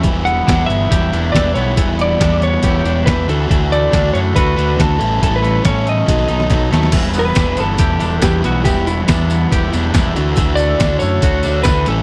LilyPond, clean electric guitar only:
\new Staff \with { instrumentName = "Clean electric guitar" } { \time 4/4 \key e \dorian \tempo 4 = 140 e8 b8 d'8 b8 g'8 d'8 e8 b8 | e8 b8 d'8 b8 g'8 d'8 e8 e8 | e8 a8 d'8 a8 fis'8 d'8 e8 e8 | e8 a8 cis'8 a8 fis8 dis'8 fis8 a8 |
e8 b8 d'8 b8 g'8 d'8 e8 b8 | e8 b8 d'8 b8 g'8 d'8 e8 e8 | e8 a8 d'8 a8 fis'8 d'8 e8 e8 | }